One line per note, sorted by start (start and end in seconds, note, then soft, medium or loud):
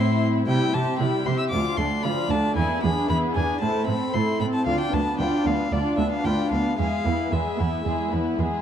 0.00 0.43 A2 medium
0.00 0.47 A2 medium
0.00 0.45 C4 medium
0.00 0.43 E4 soft
0.00 0.43 E4 medium
0.00 0.43 E5 soft
0.00 0.47 E5 medium
0.00 0.21 C6 medium
0.47 0.71 C3 medium
0.47 0.56 C3 medium
0.47 0.72 G3 medium
0.47 0.72 E4 medium
0.47 0.71 G5 medium
0.47 0.75 G5 medium
0.73 0.97 C3 soft
0.73 0.82 C3 medium
0.73 1.00 C4 soft
0.73 1.00 G4 medium
0.73 1.00 E5 soft
0.73 0.99 A5 medium
0.99 1.23 C3 medium
0.99 1.08 C3 medium
0.99 1.26 G3 medium
0.99 1.26 E4 soft
0.99 1.48 E4 soft
0.99 1.48 E5 soft
0.99 1.26 G5 medium
0.99 1.27 B5 medium
1.26 1.49 C3 medium
1.26 1.34 C3 medium
1.26 1.52 C4 medium
1.26 1.52 G4 medium
1.26 1.52 E5 soft
1.26 1.38 C6 medium
1.39 1.44 E6 medium
1.50 1.76 D2 medium
1.50 1.60 D2 medium
1.50 1.76 F3 medium
1.50 1.76 F4 soft
1.50 1.76 F5 medium
1.50 1.78 D6 medium
1.77 1.86 D2 medium
1.77 2.02 D2 soft
1.77 2.04 A3 soft
1.77 2.04 D4 soft
1.77 2.04 D5 soft
1.77 2.05 C6 medium
2.03 2.12 D2 medium
2.03 2.28 D2 medium
2.03 2.31 F3 medium
2.03 2.30 F4 medium
2.03 2.53 F4 soft
2.03 2.53 D5 soft
2.03 2.31 F5 soft
2.03 2.31 B5 medium
2.30 2.38 D2 medium
2.30 2.54 D2 soft
2.30 2.57 A3 medium
2.30 2.56 D4 medium
2.30 2.57 D5 soft
2.30 2.56 A5 medium
2.56 2.64 E2 medium
2.56 2.80 E2 soft
2.56 2.81 B3 medium
2.56 2.81 E4 medium
2.56 2.81 G#4 soft
2.56 2.82 G#5 medium
2.82 2.91 E2 medium
2.82 3.07 E2 soft
2.82 3.09 D4 soft
2.82 3.09 G#4 soft
2.82 3.09 B4 soft
2.82 3.09 B5 medium
3.08 3.17 E2 medium
3.08 3.33 E2 medium
3.08 3.35 B3 medium
3.08 3.35 E4 soft
3.08 3.58 E4 soft
3.08 3.35 G#4 medium
3.08 3.58 B4 soft
3.08 3.17 B5 medium
3.34 3.43 E2 medium
3.34 3.59 E2 soft
3.34 3.62 D4 soft
3.34 3.61 G#4 soft
3.34 3.62 B4 medium
3.34 3.60 G#5 medium
3.61 3.69 A2 medium
3.61 3.86 A2 medium
3.61 3.86 A3 medium
3.61 3.86 E4 medium
3.61 3.86 C5 soft
3.61 3.86 A5 medium
3.87 3.95 A2 medium
3.87 4.11 A2 soft
3.87 4.14 C4 soft
3.87 4.15 C4 soft
3.87 4.14 A4 soft
3.87 4.15 B5 medium
4.14 4.22 A2 medium
4.14 4.38 A2 medium
4.14 4.40 A3 medium
4.14 4.63 E4 soft
4.14 4.41 E4 medium
4.14 4.63 A4 soft
4.14 4.41 C5 soft
4.14 4.40 C6 medium
4.40 4.64 A2 medium
4.40 4.48 A2 medium
4.40 4.67 C4 soft
4.40 4.67 A4 soft
4.40 4.46 B5 medium
4.54 4.66 A5 medium
4.66 4.74 D2 medium
4.66 4.90 D2 soft
4.66 4.91 D4 medium
4.66 4.91 F4 medium
4.66 4.91 D5 soft
4.66 4.80 F5 medium
4.80 4.95 G5 medium
4.93 5.17 D2 soft
4.93 5.01 D2 medium
4.93 5.20 B3 soft
4.93 5.19 D4 soft
4.93 5.19 B4 soft
4.93 5.19 A5 medium
5.19 5.27 D2 medium
5.19 5.43 D2 soft
5.19 5.68 B3 soft
5.19 5.46 D4 medium
5.19 5.68 F4 soft
5.19 5.46 F4 medium
5.19 5.68 B4 soft
5.19 5.46 D5 medium
5.19 5.48 G5 medium
5.46 5.69 D2 soft
5.46 5.54 D2 medium
5.46 5.72 B3 soft
5.46 5.72 D4 soft
5.46 5.72 B4 soft
5.46 5.74 F5 medium
5.72 5.80 D2 medium
5.72 5.96 D2 soft
5.72 5.97 D4 soft
5.72 6.57 D4 soft
5.72 5.97 F4 soft
5.72 5.97 D5 medium
5.72 5.97 D5 soft
5.98 6.06 D2 medium
5.98 6.23 D2 soft
5.98 6.25 B3 soft
5.98 6.25 D4 soft
5.98 6.25 B4 soft
5.98 6.11 E5 medium
6.12 6.26 F5 medium
6.25 6.33 D2 medium
6.25 6.49 D2 soft
6.25 6.75 B3 soft
6.25 6.52 D4 soft
6.25 6.52 F4 soft
6.25 6.75 F4 soft
6.25 6.75 B4 soft
6.25 6.52 D5 soft
6.25 6.52 G5 medium
6.51 6.60 D2 soft
6.51 6.76 D2 soft
6.51 6.79 B3 soft
6.51 6.78 D4 soft
6.51 6.78 B4 soft
6.51 6.78 F5 medium
6.78 7.03 E2 soft
6.78 6.87 E2 medium
6.78 7.04 G#3 soft
6.78 7.03 G#4 soft
6.78 7.03 E5 soft
6.78 7.34 F5 medium
7.05 7.29 E2 soft
7.05 7.13 E2 soft
7.05 7.32 B3 soft
7.05 7.32 E4 soft
7.05 7.32 B4 soft
7.32 7.40 E2 soft
7.32 7.56 E2 soft
7.32 7.59 G#3 soft
7.32 7.82 B3 soft
7.32 7.59 G#4 soft
7.32 7.82 G#4 soft
7.32 7.82 B4 soft
7.32 8.39 E5 medium
7.32 7.59 E5 soft
7.59 7.83 E2 soft
7.59 7.67 E2 medium
7.59 7.86 B3 soft
7.59 7.86 E4 soft
7.59 7.86 B4 soft
7.85 8.09 E2 soft
7.85 7.94 E2 medium
7.85 8.10 G#3 soft
7.85 8.39 E4 soft
7.85 8.10 G#4 soft
7.85 8.10 E5 soft
8.12 8.36 E2 soft
8.12 8.20 E2 soft
8.12 8.39 B3 soft
8.12 8.39 E4 soft
8.12 8.39 B4 soft
8.38 8.62 E2 soft
8.38 8.47 E2 medium
8.38 8.62 G#3 soft
8.38 8.62 B3 soft
8.38 8.62 G#4 soft
8.38 8.62 B4 soft
8.38 8.62 E5 soft